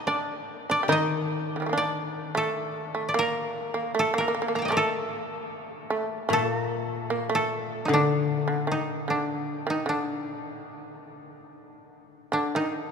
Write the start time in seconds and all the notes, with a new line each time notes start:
Already playing: A#4 D#5
0.07 D4 D5
0.70 D4 D5
0.83 G4
0.88 D#3 D#4
0.92 D#5
1.56 D3 D#3
1.62 G3
1.66 A3 A#3
1.73 D4
1.78 D5
2.35 A3 A4
2.95 A3
3.09 D5
3.14 A#3
3.19 A#4
3.74 A#3
3.95 A3
3.99 A4
4.14 A#3
4.18 A#3 A#4
4.28 A#3
4.35 A#3
4.42 A#3
4.48 A#3
4.55 A#3 A5 A#5
4.62 D#5 G5
4.68 A3 A#4 D5
4.77 A4
5.90 A3
6.29 A#2 A3
6.33 A4
6.48 A#3
6.56 A#4
7.10 A#3
7.29 A3
7.35 A4
7.85 D3 D#4
7.94 D4
8.48 D3
8.67 D#3
8.71 D#4
9.08 D3 D4
9.67 D#3 D#4
9.86 D3 D4
10.75 D#3
10.93 D3
11.23 D#3
11.41 D3
12.32 D3 D4
12.55 D#3 D#4